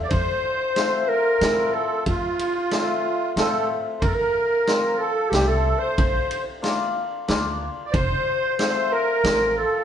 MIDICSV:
0, 0, Header, 1, 6, 480
1, 0, Start_track
1, 0, Key_signature, -1, "major"
1, 0, Tempo, 652174
1, 80, Time_signature, 3, 2, 24, 8
1, 7243, End_track
2, 0, Start_track
2, 0, Title_t, "Accordion"
2, 0, Program_c, 0, 21
2, 22, Note_on_c, 0, 74, 65
2, 77, Note_off_c, 0, 74, 0
2, 83, Note_on_c, 0, 72, 85
2, 719, Note_off_c, 0, 72, 0
2, 745, Note_on_c, 0, 72, 54
2, 798, Note_off_c, 0, 72, 0
2, 803, Note_on_c, 0, 70, 83
2, 1149, Note_off_c, 0, 70, 0
2, 1160, Note_on_c, 0, 70, 76
2, 1280, Note_on_c, 0, 69, 65
2, 1283, Note_off_c, 0, 70, 0
2, 1502, Note_off_c, 0, 69, 0
2, 1525, Note_on_c, 0, 65, 81
2, 2452, Note_off_c, 0, 65, 0
2, 2484, Note_on_c, 0, 69, 73
2, 2704, Note_off_c, 0, 69, 0
2, 2938, Note_on_c, 0, 72, 59
2, 2961, Note_off_c, 0, 72, 0
2, 2961, Note_on_c, 0, 70, 79
2, 3054, Note_off_c, 0, 70, 0
2, 3065, Note_on_c, 0, 70, 78
2, 3549, Note_off_c, 0, 70, 0
2, 3560, Note_on_c, 0, 70, 63
2, 3676, Note_on_c, 0, 69, 74
2, 3683, Note_off_c, 0, 70, 0
2, 3914, Note_on_c, 0, 67, 76
2, 3924, Note_off_c, 0, 69, 0
2, 4028, Note_off_c, 0, 67, 0
2, 4037, Note_on_c, 0, 69, 71
2, 4261, Note_off_c, 0, 69, 0
2, 4262, Note_on_c, 0, 72, 89
2, 4722, Note_off_c, 0, 72, 0
2, 5785, Note_on_c, 0, 74, 57
2, 5829, Note_on_c, 0, 72, 91
2, 5839, Note_off_c, 0, 74, 0
2, 6285, Note_off_c, 0, 72, 0
2, 6316, Note_on_c, 0, 72, 83
2, 6559, Note_on_c, 0, 70, 88
2, 6566, Note_off_c, 0, 72, 0
2, 7046, Note_on_c, 0, 69, 66
2, 7054, Note_off_c, 0, 70, 0
2, 7238, Note_off_c, 0, 69, 0
2, 7243, End_track
3, 0, Start_track
3, 0, Title_t, "Clarinet"
3, 0, Program_c, 1, 71
3, 69, Note_on_c, 1, 72, 99
3, 800, Note_on_c, 1, 70, 91
3, 811, Note_off_c, 1, 72, 0
3, 1280, Note_on_c, 1, 69, 78
3, 1291, Note_off_c, 1, 70, 0
3, 1527, Note_on_c, 1, 65, 80
3, 1538, Note_off_c, 1, 69, 0
3, 2722, Note_off_c, 1, 65, 0
3, 2955, Note_on_c, 1, 70, 70
3, 3005, Note_on_c, 1, 69, 69
3, 3016, Note_off_c, 1, 70, 0
3, 3054, Note_on_c, 1, 70, 83
3, 3065, Note_off_c, 1, 69, 0
3, 3665, Note_on_c, 1, 69, 82
3, 3676, Note_off_c, 1, 70, 0
3, 3902, Note_on_c, 1, 67, 93
3, 3913, Note_off_c, 1, 69, 0
3, 4026, Note_off_c, 1, 67, 0
3, 4030, Note_on_c, 1, 69, 79
3, 4262, Note_on_c, 1, 72, 89
3, 4273, Note_off_c, 1, 69, 0
3, 4751, Note_off_c, 1, 72, 0
3, 5843, Note_on_c, 1, 72, 94
3, 6570, Note_on_c, 1, 70, 98
3, 6581, Note_off_c, 1, 72, 0
3, 7046, Note_off_c, 1, 70, 0
3, 7050, Note_on_c, 1, 69, 87
3, 7243, Note_off_c, 1, 69, 0
3, 7243, End_track
4, 0, Start_track
4, 0, Title_t, "Hammered dulcimer"
4, 0, Program_c, 2, 15
4, 563, Note_on_c, 2, 57, 53
4, 569, Note_on_c, 2, 60, 47
4, 572, Note_on_c, 2, 65, 68
4, 801, Note_off_c, 2, 57, 0
4, 803, Note_off_c, 2, 60, 0
4, 805, Note_off_c, 2, 65, 0
4, 1041, Note_on_c, 2, 53, 56
4, 1047, Note_on_c, 2, 60, 59
4, 1052, Note_on_c, 2, 64, 60
4, 1283, Note_off_c, 2, 60, 0
4, 1285, Note_off_c, 2, 64, 0
4, 2000, Note_on_c, 2, 57, 59
4, 2004, Note_on_c, 2, 60, 42
4, 2009, Note_on_c, 2, 65, 64
4, 2239, Note_off_c, 2, 57, 0
4, 2241, Note_off_c, 2, 60, 0
4, 2243, Note_off_c, 2, 65, 0
4, 2478, Note_on_c, 2, 57, 64
4, 2480, Note_on_c, 2, 60, 67
4, 2486, Note_on_c, 2, 65, 69
4, 2718, Note_off_c, 2, 57, 0
4, 2719, Note_off_c, 2, 60, 0
4, 2722, Note_off_c, 2, 65, 0
4, 2995, Note_off_c, 2, 53, 0
4, 3441, Note_on_c, 2, 53, 54
4, 3443, Note_on_c, 2, 60, 48
4, 3450, Note_on_c, 2, 65, 62
4, 3681, Note_off_c, 2, 60, 0
4, 3685, Note_off_c, 2, 65, 0
4, 3920, Note_on_c, 2, 57, 52
4, 3924, Note_on_c, 2, 60, 50
4, 3929, Note_on_c, 2, 62, 58
4, 4160, Note_off_c, 2, 57, 0
4, 4162, Note_off_c, 2, 60, 0
4, 4164, Note_off_c, 2, 62, 0
4, 4436, Note_off_c, 2, 53, 0
4, 4873, Note_on_c, 2, 58, 59
4, 4877, Note_on_c, 2, 62, 53
4, 4880, Note_on_c, 2, 65, 76
4, 5116, Note_off_c, 2, 58, 0
4, 5118, Note_off_c, 2, 62, 0
4, 5120, Note_off_c, 2, 65, 0
4, 5358, Note_on_c, 2, 58, 64
4, 5359, Note_on_c, 2, 62, 65
4, 5368, Note_on_c, 2, 65, 73
4, 5599, Note_off_c, 2, 58, 0
4, 5600, Note_off_c, 2, 62, 0
4, 5604, Note_off_c, 2, 65, 0
4, 6325, Note_on_c, 2, 57, 52
4, 6327, Note_on_c, 2, 60, 55
4, 6333, Note_on_c, 2, 65, 60
4, 6563, Note_off_c, 2, 57, 0
4, 6564, Note_off_c, 2, 60, 0
4, 6567, Note_off_c, 2, 65, 0
4, 6798, Note_on_c, 2, 53, 54
4, 6802, Note_on_c, 2, 60, 47
4, 6805, Note_on_c, 2, 65, 58
4, 7041, Note_off_c, 2, 60, 0
4, 7043, Note_off_c, 2, 65, 0
4, 7243, Note_off_c, 2, 53, 0
4, 7243, End_track
5, 0, Start_track
5, 0, Title_t, "Upright bass"
5, 0, Program_c, 3, 32
5, 82, Note_on_c, 3, 41, 74
5, 225, Note_off_c, 3, 41, 0
5, 1040, Note_on_c, 3, 45, 83
5, 1327, Note_off_c, 3, 45, 0
5, 1519, Note_on_c, 3, 41, 75
5, 1663, Note_off_c, 3, 41, 0
5, 2475, Note_on_c, 3, 45, 80
5, 2764, Note_off_c, 3, 45, 0
5, 2958, Note_on_c, 3, 41, 83
5, 3102, Note_off_c, 3, 41, 0
5, 3913, Note_on_c, 3, 36, 82
5, 4203, Note_off_c, 3, 36, 0
5, 4401, Note_on_c, 3, 34, 96
5, 4545, Note_off_c, 3, 34, 0
5, 5364, Note_on_c, 3, 38, 73
5, 5651, Note_off_c, 3, 38, 0
5, 5842, Note_on_c, 3, 29, 81
5, 5985, Note_off_c, 3, 29, 0
5, 6799, Note_on_c, 3, 33, 77
5, 7088, Note_off_c, 3, 33, 0
5, 7243, End_track
6, 0, Start_track
6, 0, Title_t, "Drums"
6, 77, Note_on_c, 9, 51, 44
6, 81, Note_on_c, 9, 36, 74
6, 151, Note_off_c, 9, 51, 0
6, 154, Note_off_c, 9, 36, 0
6, 560, Note_on_c, 9, 38, 60
6, 560, Note_on_c, 9, 51, 43
6, 633, Note_off_c, 9, 38, 0
6, 633, Note_off_c, 9, 51, 0
6, 1040, Note_on_c, 9, 38, 70
6, 1040, Note_on_c, 9, 51, 45
6, 1113, Note_off_c, 9, 38, 0
6, 1113, Note_off_c, 9, 51, 0
6, 1517, Note_on_c, 9, 51, 48
6, 1519, Note_on_c, 9, 36, 73
6, 1591, Note_off_c, 9, 51, 0
6, 1592, Note_off_c, 9, 36, 0
6, 1761, Note_on_c, 9, 51, 50
6, 1835, Note_off_c, 9, 51, 0
6, 1997, Note_on_c, 9, 38, 64
6, 1997, Note_on_c, 9, 51, 43
6, 2071, Note_off_c, 9, 38, 0
6, 2071, Note_off_c, 9, 51, 0
6, 2479, Note_on_c, 9, 38, 69
6, 2479, Note_on_c, 9, 51, 49
6, 2553, Note_off_c, 9, 38, 0
6, 2553, Note_off_c, 9, 51, 0
6, 2959, Note_on_c, 9, 36, 80
6, 2960, Note_on_c, 9, 51, 42
6, 3033, Note_off_c, 9, 36, 0
6, 3033, Note_off_c, 9, 51, 0
6, 3440, Note_on_c, 9, 38, 64
6, 3440, Note_on_c, 9, 51, 38
6, 3513, Note_off_c, 9, 38, 0
6, 3513, Note_off_c, 9, 51, 0
6, 3920, Note_on_c, 9, 38, 66
6, 3920, Note_on_c, 9, 51, 47
6, 3994, Note_off_c, 9, 38, 0
6, 3994, Note_off_c, 9, 51, 0
6, 4401, Note_on_c, 9, 51, 46
6, 4402, Note_on_c, 9, 36, 82
6, 4475, Note_off_c, 9, 51, 0
6, 4476, Note_off_c, 9, 36, 0
6, 4642, Note_on_c, 9, 51, 44
6, 4716, Note_off_c, 9, 51, 0
6, 4884, Note_on_c, 9, 38, 55
6, 4884, Note_on_c, 9, 51, 44
6, 4958, Note_off_c, 9, 38, 0
6, 4958, Note_off_c, 9, 51, 0
6, 5361, Note_on_c, 9, 38, 75
6, 5361, Note_on_c, 9, 51, 43
6, 5434, Note_off_c, 9, 38, 0
6, 5434, Note_off_c, 9, 51, 0
6, 5842, Note_on_c, 9, 36, 84
6, 5842, Note_on_c, 9, 51, 45
6, 5915, Note_off_c, 9, 36, 0
6, 5916, Note_off_c, 9, 51, 0
6, 6322, Note_on_c, 9, 38, 63
6, 6322, Note_on_c, 9, 51, 46
6, 6396, Note_off_c, 9, 38, 0
6, 6396, Note_off_c, 9, 51, 0
6, 6804, Note_on_c, 9, 38, 76
6, 6804, Note_on_c, 9, 51, 52
6, 6877, Note_off_c, 9, 38, 0
6, 6877, Note_off_c, 9, 51, 0
6, 7243, End_track
0, 0, End_of_file